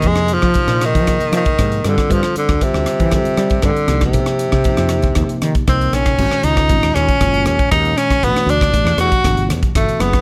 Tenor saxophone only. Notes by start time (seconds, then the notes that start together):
0.07 G#3
0.34 F3
0.85 D#3
1.37 D#3
1.88 D3
2.12 F3
2.38 D3
2.63 C3
3.14 C3
3.65 D3
4.05 C3
5.69 C4
5.94 C#4
6.44 D#4
6.94 C#4
7.47 C#4
7.71 D#4
7.97 C#4
8.24 B3
8.50 D4
9.00 F#4
9.76 A3
10.00 B3